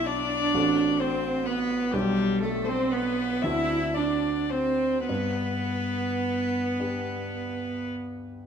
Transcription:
Already playing: grand piano B1 B3 G4 D5
0.07 viola D4, cello D4, violin D5
0.54 grand piano A1 C4 F#4 A4
0.99 cello C4, viola C4, violin C5
1.46 cello B3, viola B3, violin B4
1.92 grand piano B1 B3 D4 G4, cello G3, viola G3, violin G4
2.42 cello A3, viola A3, violin A4
2.65 cello C4, viola C4, violin C5
2.90 cello B3, viola B3, violin B4
3.42 grand piano D2 C4 D4 F#4, cello E4, viola E4, violin E5
3.94 cello D4, viola D4, violin D5
4.50 cello C4, viola C4, violin C5
5.08 grand piano G2, viola B3, cello B3, violin B4
6.79 grand piano B3 D4 G4

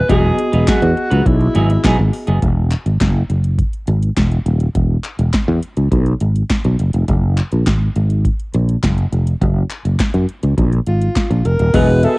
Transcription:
0.09 fretless electric bass E1, clean electric guitar F#3 B3 D#4 G#4, tine electric piano B3 F#4 G#4 D#5, alto saxophone G#4, kick, closed hi-hat
0.38 muted clean electric guitar stroke, closed hi-hat
0.52 fretless electric bass E1, clean electric guitar F#3 B3 D#4 B4, closed hi-hat
0.67 clean electric guitar F#3 B3 D#4 G#4, alto saxophone F#4, muted fretless electric bass stroke, kick, snare, clap, closed hi-hat
0.82 fretless electric bass E2, muted clean electric guitar stroke, closed hi-hat
0.96 muted clean electric guitar stroke, closed hi-hat
1.11 fretless electric bass C#2, clean electric guitar F#3 B3 D#4 B4, closed hi-hat
1.25 fretless electric bass B1, alto saxophone E4, muted clean electric guitar stroke, kick, closed hi-hat
1.40 muted clean electric guitar stroke, closed hi-hat
1.54 fretless electric bass G#1, clean electric guitar F#3 B3 D#4 G#4, closed hi-hat
1.69 muted clean electric guitar stroke, closed hi-hat
1.83 fretless electric bass B1, clean electric guitar F#3 B3 D#4 G#4, kick, snare, clap, closed hi-hat
1.98 fretless electric bass G#1, muted clean electric guitar stroke
2.13 muted clean electric guitar stroke, open hi-hat
2.27 fretless electric bass F#1, clean electric guitar F#3 B3 D#4 G#4, closed hi-hat
2.42 fretless electric bass E1, kick, closed hi-hat
2.71 clap, closed hi-hat
2.86 fretless electric bass G#1, closed hi-hat
3.01 fretless electric bass F#1, kick, snare, clap, closed hi-hat
3.30 fretless electric bass F#1, closed hi-hat
3.44 closed hi-hat
3.59 kick, closed hi-hat
3.73 closed hi-hat
3.87 fretless electric bass G#1, closed hi-hat
4.03 closed hi-hat
4.17 fretless electric bass E1, kick, snare, clap, closed hi-hat
4.32 closed hi-hat
4.46 fretless electric bass D#1, closed hi-hat
4.60 closed hi-hat
4.75 fretless electric bass E1, kick, closed hi-hat
5.04 clap, closed hi-hat
5.19 fretless electric bass E1, closed hi-hat
5.33 muted fretless electric bass stroke, kick, snare, clap, closed hi-hat
5.48 fretless electric bass E2
5.63 closed hi-hat
5.77 fretless electric bass C#2, closed hi-hat
5.92 fretless electric bass B1, kick, closed hi-hat
6.06 closed hi-hat
6.20 fretless electric bass G#1, closed hi-hat
6.36 closed hi-hat
6.50 kick, snare, clap, closed hi-hat
6.64 fretless electric bass B1, closed hi-hat
6.79 fretless electric bass F#1, closed hi-hat
6.93 fretless electric bass F1, closed hi-hat
7.08 fretless electric bass F#1, kick, closed hi-hat
7.37 clap, closed hi-hat
7.52 fretless electric bass A#1, closed hi-hat
7.66 fretless electric bass G#1, kick, snare, clap, closed hi-hat
7.96 fretless electric bass G#1, closed hi-hat
8.10 closed hi-hat
8.25 kick, closed hi-hat
8.39 closed hi-hat
8.54 fretless electric bass A#1, closed hi-hat
8.69 closed hi-hat
8.83 fretless electric bass F#1, kick, snare, clap, closed hi-hat
8.98 closed hi-hat
9.12 fretless electric bass F1, closed hi-hat
9.27 closed hi-hat
9.41 fretless electric bass F#1, kick, closed hi-hat
9.70 clap, closed hi-hat
9.85 fretless electric bass F#1, closed hi-hat
9.99 muted fretless electric bass stroke, kick, snare, clap, closed hi-hat
10.14 fretless electric bass F#2, closed hi-hat
10.29 closed hi-hat
10.43 fretless electric bass C#2, closed hi-hat
10.58 fretless electric bass A#1, kick, closed hi-hat
10.72 closed hi-hat
10.87 fretless electric bass G#1, alto saxophone F4, closed hi-hat
11.02 closed hi-hat
11.16 kick, snare, clap, closed hi-hat
11.30 fretless electric bass A#1, closed hi-hat
11.45 fretless electric bass F1, alto saxophone A#4, closed hi-hat
11.59 fretless electric bass D#1, closed hi-hat
11.73 fretless electric bass E1, clean electric guitar F#3 B3 D#4 G#4, tine electric piano B3 F#4 G#4 D#5, alto saxophone B4, kick, closed hi-hat, crash
11.88 muted clean electric guitar stroke
12.03 analog polysynth B3 G#4 E5, alto saxophone A4, muted clean electric guitar stroke, closed hi-hat

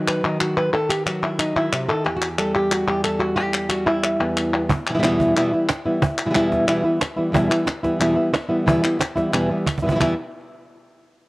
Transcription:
Already playing: nylon-string guitar D#3 F#3 B3 D#4
0.08 nylon-string guitar B4, clap
0.23 nylon-string guitar D#3 D#4
0.41 nylon-string guitar F#4, clap
0.57 nylon-string guitar B4, clap
0.73 nylon-string guitar D#3 A4
0.89 nylon-string guitar G4, clap
1.06 nylon-string guitar F#3 F#4, clap
1.23 nylon-string guitar E4, clap
1.39 nylon-string guitar D#4, clap
1.56 nylon-string guitar D#3 E4
1.72 nylon-string guitar C3 F#4, clap
1.89 nylon-string guitar D#3 A4, clap
2.04 nylon-string guitar E2 G4, clap
2.16 nylon-string guitar F#4
2.22 clap
2.28 nylon-string guitar G4
2.38 nylon-string guitar G3 A4, clap
2.56 nylon-string guitar G4
2.72 nylon-string guitar F#4, clap
2.88 nylon-string guitar E2 G4
3.04 nylon-string guitar A4, clap
3.19 nylon-string guitar F#4, clap
3.36 nylon-string guitar E2 G4
3.54 clap
3.69 nylon-string guitar G3 F#4, clap
3.86 nylon-string guitar E4
4.04 clap
4.19 nylon-string guitar E2 B3, clap
4.37 clap
4.53 nylon-string guitar B3
4.69 muted nylon-string guitar stroke, cajon bass
4.86 nylon-string guitar B2 E3 G3, cajon slap, clap
4.90 nylon-string guitar B2 B3 E4
4.94 nylon-string guitar B2 E3 G3 B3 E4
4.99 nylon-string guitar E2 E3 G3 B3 E4, cajon slap
5.03 nylon-string guitar B2 E3 G3 B3 E4, clap
5.20 cajon bass
5.36 nylon-string guitar E2 B2 E3 G3 B3 E4, clap
5.53 nylon-string guitar E3 G3 B3 E4, cajon slap
5.69 muted nylon-string guitar stroke, cajon slap, clap
5.85 nylon-string guitar E3 G3 B3 E4
6.02 muted nylon-string guitar stroke, cajon bass
6.18 cajon slap, clap
6.25 nylon-string guitar B2 E3 G3 B3 E4
6.30 nylon-string guitar B2 E3 G3 B3 E4
6.34 nylon-string guitar E2 B2 E3 G3 B3 E4, cajon slap, clap
6.52 cajon bass, cajon slap
6.67 nylon-string guitar E2 B2 E3 G3 B3 E4, clap
6.84 nylon-string guitar E3 G3 B3 E4, cajon slap
7.01 muted nylon-string guitar stroke, cajon slap, clap
7.16 nylon-string guitar E3 G3 B3 E4
7.32 nylon-string guitar E2 B2 E3 G3 B3 E4, cajon bass
7.50 nylon-string guitar E3 G3 B3 E4, clap
7.66 muted nylon-string guitar stroke, cajon slap, clap
7.83 nylon-string guitar E3 G3 B3 E4, cajon bass, cajon slap
7.99 nylon-string guitar E2 B2 E3 G3 B3 E4, clap
8.16 nylon-string guitar E3 G3 B3 E4
8.33 muted nylon-string guitar stroke, cajon slap, clap
8.49 nylon-string guitar E3 G3 B3 E4
8.66 nylon-string guitar E2 B2 E3 G3 B3 E4, cajon bass
8.83 nylon-string guitar E3 G3 B3 E4, clap
8.99 muted nylon-string guitar stroke, cajon slap, clap
9.16 nylon-string guitar E3 G3 B3 E4, cajon bass, cajon slap
9.32 nylon-string guitar E2 B2 E3 G3 B3 E4, cajon slap, clap
9.50 nylon-string guitar E3 G3 B3 E4
9.67 muted nylon-string guitar stroke, cajon bass, clap
9.78 cajon bass
9.83 nylon-string guitar B2 E3 G3 B3 E4
9.87 nylon-string guitar B2 E3 G3 B3 E4, cajon bass
9.91 nylon-string guitar B2 E3 B3 E4
9.96 nylon-string guitar E2 G3 B3 E4
10.00 nylon-string guitar B2 E3 G3 B3 E4, cajon bass, clap

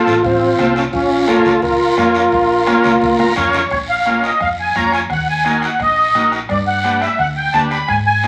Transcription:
Already playing: transistor combo organ C4 F4 A4, accordion F4
0.07 fingered electric bass A1, short guiro
0.24 fingered electric bass A1, accordion C4, transistor combo organ C4 F4, bombo low, low conga, long guiro
0.59 fingered electric bass C2, transistor combo organ C4 F4 A4, bombo rim, high conga, short guiro
0.75 accordion C#4, transistor combo organ C#4 F4, short guiro
0.92 fingered electric bass A#1, accordion C#4, transistor combo organ C#4 F4, bombo low, long guiro
1.28 transistor combo organ C#4 F4 A4 A#4, accordion F4, bombo rim, high conga, short guiro
1.45 fingered electric bass C#2, short guiro
1.62 fingered electric bass C#2, accordion F4, transistor combo organ F4 A#4, bombo low, low conga, long guiro
1.97 fingered electric bass F2, transistor combo organ C#4 F4 A#4, bombo rim, high conga, short guiro
2.15 short guiro
2.32 fingered electric bass A#1, bombo low, long guiro
2.67 transistor combo organ C#4 F4 A#4, bombo rim, high conga, short guiro
2.84 fingered electric bass C#2, high conga, short guiro
3.02 fingered electric bass C#2, bombo low, high conga, long guiro
3.19 transistor combo organ A#5, bombo rim, high conga
3.36 fingered electric bass F2, transistor combo organ C#4 F4 A#4 C#5, bombo low, bombo rim, low conga, short guiro
3.53 low conga, short guiro
3.70 fingered electric bass A#1, accordion C#5, bombo low, bombo rim, high conga, long guiro
3.89 accordion F5
4.06 transistor combo organ C#4 F4 A#4, bombo rim, high conga, short guiro
4.23 accordion D#5, bombo rim, short guiro
4.40 fingered electric bass F2, accordion F5, bombo low, bombo rim, high conga, long guiro
4.60 accordion G#5
4.75 fingered electric bass F2, transistor combo organ C#4 F4 C#5, accordion A#5, bombo low, bombo rim, high conga, short guiro
4.92 accordion G#5, bombo rim, short guiro
5.10 fingered electric bass D#2, accordion F#5, bombo low, bombo rim, high conga, long guiro
5.29 accordion G#5
5.45 transistor combo organ D#4 F#4 A#4, bombo rim, high conga, short guiro
5.62 accordion F#5, bombo rim, short guiro
5.80 fingered electric bass A#1, accordion D#5, bombo low, bombo rim, high conga, long guiro
6.15 fingered electric bass A#1, transistor combo organ D#4 F#4 A#4, bombo rim, high conga, short guiro
6.32 bombo rim, short guiro
6.49 fingered electric bass G2, accordion D5, bombo low, bombo rim, high conga, long guiro
6.67 accordion F#5
6.84 transistor combo organ D4 G4 B4, bombo rim, high conga, short guiro
7.02 accordion E5, bombo rim, short guiro
7.19 fingered electric bass D2, accordion F#5, bombo low, bombo rim, high conga, long guiro
7.37 accordion G5
7.53 fingered electric bass D2, transistor combo organ D4 G4 B4, accordion A5, bombo low, bombo rim, high conga, short guiro
7.71 accordion B5, bombo rim, short guiro
7.88 fingered electric bass G#2, accordion G#5, bombo low, bombo rim, high conga, long guiro
8.06 accordion G#5
8.23 transistor combo organ D#4 G#4, bombo rim, high conga, short guiro

